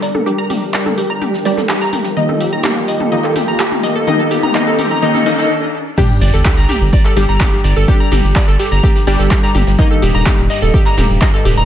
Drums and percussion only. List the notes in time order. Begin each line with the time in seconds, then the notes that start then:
0.02 closed hi-hat, open hi-hat
0.15 mid tom
0.26 closed hi-hat
0.39 closed hi-hat
0.50 open hi-hat, mid tom
0.73 snare, clap, closed hi-hat
0.86 closed hi-hat, mid tom
0.98 closed hi-hat, open hi-hat
1.22 closed hi-hat, mid tom
1.34 snare
1.45 closed hi-hat, open hi-hat
1.57 snare, mid tom
1.69 snare, clap, closed hi-hat
1.81 snare
1.93 closed hi-hat, open hi-hat, mid tom
2.04 snare
2.18 closed hi-hat
2.29 mid tom
2.41 closed hi-hat, open hi-hat
2.63 snare, clap, closed hi-hat, mid tom
2.76 closed hi-hat
2.88 closed hi-hat, open hi-hat
3.00 mid tom
3.12 closed hi-hat
3.24 clap
3.35 snare, closed hi-hat, open hi-hat, mid tom
3.59 snare, clap, closed hi-hat
3.72 closed hi-hat, mid tom
3.83 closed hi-hat, open hi-hat
4.07 closed hi-hat, mid tom
4.20 closed hi-hat
4.31 closed hi-hat, open hi-hat
4.43 mid tom
4.54 snare, clap, closed hi-hat
4.67 closed hi-hat
4.78 closed hi-hat, open hi-hat, mid tom
5.03 closed hi-hat
5.15 snare, mid tom
5.26 closed hi-hat, open hi-hat
5.38 snare
5.97 kick, closed hi-hat, mid tom, crash, shekere
6.21 closed hi-hat, open hi-hat, shekere
6.33 shekere
6.45 kick, snare, clap, closed hi-hat, shekere
6.57 closed hi-hat, shekere
6.69 closed hi-hat, open hi-hat, mid tom, shekere
6.82 shekere
6.93 kick, closed hi-hat, shekere
7.05 clap, shekere
7.16 snare, closed hi-hat, open hi-hat, shekere
7.29 shekere
7.40 kick, snare, clap, closed hi-hat, mid tom, shekere
7.53 closed hi-hat, shekere
7.64 closed hi-hat, open hi-hat, shekere
7.77 shekere
7.88 kick, closed hi-hat, shekere
8.00 closed hi-hat
8.12 open hi-hat, mid tom, shekere
8.24 shekere
8.36 kick, snare, clap, closed hi-hat, shekere
8.47 closed hi-hat, shekere
8.60 closed hi-hat, open hi-hat, shekere
8.71 shekere
8.83 kick, closed hi-hat, mid tom, shekere
8.95 snare, shekere
9.07 closed hi-hat, open hi-hat, shekere
9.19 snare, shekere
9.31 kick, snare, clap, closed hi-hat, shekere
9.43 snare, shekere
9.54 closed hi-hat, open hi-hat, mid tom, shekere
9.67 snare, shekere
9.78 kick, closed hi-hat, shekere
10.02 closed hi-hat, open hi-hat, shekere
10.15 shekere
10.26 kick, snare, clap, closed hi-hat, mid tom, shekere
10.38 closed hi-hat, shekere
10.50 closed hi-hat, open hi-hat, shekere
10.62 shekere
10.74 kick, closed hi-hat, shekere
10.86 clap, shekere
10.98 snare, closed hi-hat, open hi-hat, mid tom, shekere
11.10 shekere
11.21 kick, snare, clap, closed hi-hat, shekere
11.34 closed hi-hat, shekere
11.45 closed hi-hat, open hi-hat, shekere
11.58 shekere